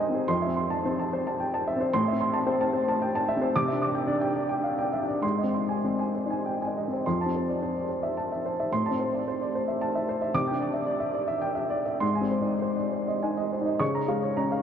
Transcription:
Already playing: G#2 C4 D#4 C5 G5 G#5 C6
0.00 D#5
0.09 C4
0.15 C5
0.28 F2 C6
0.42 E5
0.47 C4
0.57 C6
0.70 A5
0.85 C4 C5
0.99 A5
1.13 C5
1.27 A5
1.40 G5
1.54 A5
1.67 E5
1.76 C4 C5
1.93 A2 C6
2.08 E5
2.13 C4
2.21 C6
2.34 A5
2.46 C4 C5
2.61 A5
2.73 C5
2.88 A5
3.02 G5
3.15 A5
3.28 E5
3.37 C4
3.42 C5
3.56 C3 D6
3.68 E5
3.72 D4
3.82 D6
3.95 G5
4.07 D4 D5
4.21 G5
4.36 D5
4.49 G5
4.64 F5
4.79 G5
4.93 E5
5.03 D4
5.08 D5
5.22 G#2 C6
5.38 D#5
5.43 C4
5.54 C6
5.69 G#5
5.84 C4 C5
5.99 G#5
6.15 C5
6.26 D#4
6.31 G#5
6.46 G5
6.62 G#5
6.67 D#4
6.77 D#5
6.88 C4
6.93 C5
7.06 F2 C6
7.21 A5
7.26 C4
7.36 C5
7.49 D5
7.62 C5
7.77 D5
7.89 C5
8.03 E5
8.17 A5
8.32 E5
8.46 C5
8.60 E5
8.72 A2 C6
8.86 A5
8.91 C4
9.00 C5
9.15 D5
9.28 C5
9.41 D5
9.55 C5
9.68 E5
9.81 A5
9.95 E5
10.09 C5
10.22 E5
10.34 C3 D6
10.47 D4 G5
10.60 D5
10.74 E5
10.86 D5
11.00 E5
11.14 D5
11.28 E5
11.42 G5
11.55 E5
11.70 D5
11.86 E5
12.00 G#2 C6
12.15 G#5
12.21 C4
12.31 C5
12.41 D#4
12.46 D5
12.62 C5
12.77 D5
12.92 C5
13.08 D#5
13.23 D#4 G#5
13.37 D#5
13.53 C5
13.61 D#4
13.65 D#5
13.79 C#3 C#6
13.95 A#5
14.08 G#3 F5
14.23 C#5
14.37 C#4 A#5
14.52 F5

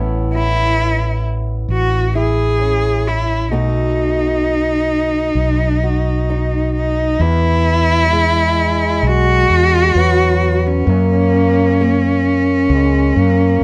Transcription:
Already playing: A1 A2 B3 C#4 E4
0.34 E4
1.69 A1
1.73 F#4
2.15 E4 G#4
2.60 C#4
3.08 E4
3.51 B1 B2 A3 D#4 F#4
5.35 B1
5.83 F#4
6.30 D#4
6.76 D#4
7.19 E2 E3 E4
8.05 G3
8.10 G#3
9.03 B1
9.07 F#4
9.50 E2
9.95 E2 F#3 B3
10.67 C#4
10.86 F#2 A#3
11.81 A#3
12.70 C#2 G#3
13.16 F#2 A#3

